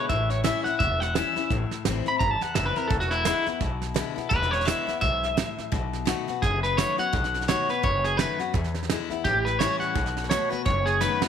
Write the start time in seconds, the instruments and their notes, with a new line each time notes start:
0.09 upright bass A1, steel-string acoustic guitar A2, clean electric guitar E5, kick, snare
0.30 clean electric guitar C#5, snare
0.44 steel-string acoustic guitar E3 G3 C#4 E4, clean electric guitar E5, snare, hi-hat pedal
0.64 steel-string acoustic guitar C#4 E4, clean electric guitar F#5, muted upright bass stroke, snare
0.79 upright bass E1, steel-string acoustic guitar E2, clean electric guitar E5, kick, snare
1.00 clean electric guitar F#5, snare
1.14 steel-string acoustic guitar E3 G3 C#4 E4, clean electric guitar E5, snare, hi-hat pedal
1.36 steel-string acoustic guitar C#4 E4, muted upright bass stroke, snare
1.50 upright bass A1, steel-string acoustic guitar A2, kick, snare
1.71 muted upright bass stroke, snare
1.85 upright bass A1, steel-string acoustic guitar E3 G3 C4 E4, snare, hi-hat pedal
2.06 steel-string acoustic guitar C4 E4, clean electric guitar B5, snare
2.19 upright bass G1, steel-string acoustic guitar E2, clean electric guitar A#5, kick, snare
2.31 clean electric guitar A5
2.41 clean electric guitar F#5, snare
2.54 upright bass F#1, steel-string acoustic guitar E3 G3 C4 E4, clean electric guitar E5, snare, hi-hat pedal
2.66 clean electric guitar B4
2.76 steel-string acoustic guitar C4 E4, clean electric guitar A#4, muted upright bass stroke, snare
2.88 upright bass E1, steel-string acoustic guitar E2, clean electric guitar A4, kick, snare
3.00 clean electric guitar F#4, snare
3.11 clean electric guitar E4, snare
3.25 steel-string acoustic guitar D3 G#3 B3 E4, snare, hi-hat pedal
3.46 steel-string acoustic guitar B3 E4, muted upright bass stroke, snare
3.61 upright bass B1, steel-string acoustic guitar B2, kick, snare
3.82 snare
3.94 steel-string acoustic guitar D3 G#3 B3 E4, snare, hi-hat pedal
4.16 steel-string acoustic guitar B3 E4, muted upright bass stroke, snare
4.29 upright bass E1, steel-string acoustic guitar E2, clean electric guitar B4, kick, snare
4.42 snare
4.51 clean electric guitar C#5, snare
4.61 snare
4.65 steel-string acoustic guitar D3 G#3 B3 E4, clean electric guitar E5, snare, hi-hat pedal
4.87 steel-string acoustic guitar B3 E4, muted upright bass stroke, snare
5.01 upright bass B1, steel-string acoustic guitar G#2, clean electric guitar E5, kick, snare
5.23 snare
5.37 steel-string acoustic guitar A2, snare, hi-hat pedal
5.58 muted upright bass stroke, snare
5.72 upright bass B1, steel-string acoustic guitar B2, kick, snare
5.93 snare
6.05 steel-string acoustic guitar D#3 A3 B3 F#4, snare, hi-hat pedal
6.28 steel-string acoustic guitar B3 F#4, muted upright bass stroke, snare
6.42 upright bass F#1, steel-string acoustic guitar F#2, clean electric guitar G#4, kick, snare
6.63 clean electric guitar B4, snare
6.77 steel-string acoustic guitar D#3 A3 B3 F#4, clean electric guitar C#5, snare, hi-hat pedal
6.98 steel-string acoustic guitar B3 F#4, clean electric guitar F#5, muted upright bass stroke, snare
7.13 upright bass B1, steel-string acoustic guitar B2, kick, snare
7.24 snare
7.34 snare
7.41 snare
7.48 steel-string acoustic guitar D#3 A3 B3 F#4, clean electric guitar C#5, snare, hi-hat pedal
7.69 steel-string acoustic guitar B3 F#4, clean electric guitar B4, muted upright bass stroke, snare
7.83 upright bass F#1, steel-string acoustic guitar F#2, clean electric guitar C#5, kick, snare
8.04 clean electric guitar G#4, snare
8.17 steel-string acoustic guitar D#3 A3 B3 F#4, clean electric guitar B4, snare, hi-hat pedal
8.39 steel-string acoustic guitar B3 F#4, muted upright bass stroke, snare
8.54 upright bass E2, steel-string acoustic guitar E2, kick, snare
8.64 snare
8.74 snare
8.83 snare
8.90 steel-string acoustic guitar D3 G#3 B3 E4, snare, hi-hat pedal
9.09 steel-string acoustic guitar B3 E4, muted upright bass stroke, snare
9.24 upright bass A1, steel-string acoustic guitar A2, clean electric guitar G4, kick, snare
9.45 clean electric guitar B4, snare
9.59 steel-string acoustic guitar E3 G3 C#4 E4, clean electric guitar C#5, snare, hi-hat pedal
9.80 clean electric guitar F#5, muted upright bass stroke, snare
9.95 upright bass B1, steel-string acoustic guitar B2, kick, snare
10.06 snare
10.17 snare
10.24 snare
10.30 steel-string acoustic guitar D#3 A3 B3 F#4, clean electric guitar C#5, snare, hi-hat pedal
10.49 steel-string acoustic guitar B3 F#4, clean electric guitar B4, muted upright bass stroke, snare
10.66 upright bass F#1, steel-string acoustic guitar F#2, clean electric guitar C#5, kick, snare
10.86 clean electric guitar G#4, snare
11.01 steel-string acoustic guitar D#3 A3 B3 F#4, clean electric guitar B4, snare, hi-hat pedal
11.21 steel-string acoustic guitar B3 F#4, muted upright bass stroke, snare